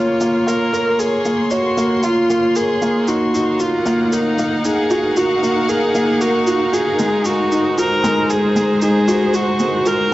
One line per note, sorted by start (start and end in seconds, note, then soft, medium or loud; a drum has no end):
0.00 0.21 A#3 medium
0.00 3.76 A#3 medium
0.00 0.47 F4 medium
0.00 0.49 F4 medium
0.00 0.25 G#4 medium
0.00 0.73 A#4 medium
0.00 0.20 C#5 medium
0.00 4.49 C#5 medium
0.00 0.32 F5 medium
0.00 3.79 C6 medium
0.21 0.36 A#3 medium
0.21 shaker soft
0.47 0.72 F4 medium
0.47 1.01 A#4 medium
0.47 shaker medium
0.73 0.97 A#4 medium
0.73 shaker medium
0.99 1.53 G#4 medium
0.99 1.24 A#4 medium
0.99 shaker medium
1.25 1.40 A#3 medium
1.25 shaker medium
1.51 2.05 F#4 medium
1.51 1.76 C#5 medium
1.51 shaker medium
1.77 2.02 A#3 medium
1.77 shaker medium
2.03 2.28 F4 medium
2.03 2.57 F4 medium
2.03 shaker medium
2.30 2.45 A#3 medium
2.30 shaker medium
2.56 3.10 G#4 medium
2.56 2.81 A#4 medium
2.56 shaker medium
2.82 3.07 A#3 medium
2.82 10.14 D#4 medium
2.82 shaker medium
3.01 10.14 A#4 medium
3.08 3.32 D#4 medium
3.08 3.62 F#4 medium
3.08 shaker medium
3.34 3.59 D#4 medium
3.34 shaker medium
3.42 7.64 F5 medium
3.60 4.05 F4 medium
3.60 3.85 F#4 medium
3.60 shaker medium
3.76 8.20 F#5 medium
3.86 4.01 A#3 medium
3.86 shaker medium
4.05 4.14 F4 medium
4.12 4.66 D#4 medium
4.12 4.37 A#4 medium
4.12 shaker medium
4.38 4.53 A#3 medium
4.38 shaker medium
4.65 4.89 D#4 medium
4.65 5.18 G#4 medium
4.65 shaker medium
4.90 5.15 F#4 medium
4.90 shaker soft
5.17 5.41 F#4 medium
5.17 5.70 F#4 medium
5.17 shaker medium
5.43 5.58 A#3 medium
5.43 shaker medium
5.69 6.22 G#4 medium
5.69 5.94 A#4 medium
5.69 shaker medium
5.95 6.20 A#3 medium
5.95 shaker medium
6.21 6.75 F#4 medium
6.21 6.46 A#4 medium
6.21 shaker medium
6.47 6.71 F#4 medium
6.47 shaker medium
6.73 6.98 F#4 medium
6.73 7.27 G#4 medium
6.73 shaker medium
6.99 10.14 G#3 medium
6.99 7.24 G#3 medium
6.99 shaker medium
7.25 7.50 D#4 medium
7.25 7.79 F#4 medium
7.25 shaker medium
7.52 7.76 D#4 medium
7.52 shaker medium
7.70 10.14 C5 medium
7.78 8.03 F#4 medium
7.78 8.32 A#4 loud
7.78 shaker medium
8.04 8.19 G#3 loud
8.04 shaker medium
8.30 8.55 G#4 medium
8.30 8.82 G#4 loud
8.30 shaker medium
8.56 8.71 G#3 medium
8.56 shaker medium
8.82 9.07 D#4 medium
8.82 9.36 G#4 loud
8.82 shaker medium
9.08 9.33 F#4 loud
9.08 shaker medium
9.34 9.59 F#4 medium
9.34 9.88 F#4 medium
9.34 shaker medium
9.59 9.75 G#3 medium
9.59 shaker medium
9.86 10.11 F#4 medium
9.86 10.14 A#4 loud
9.86 shaker medium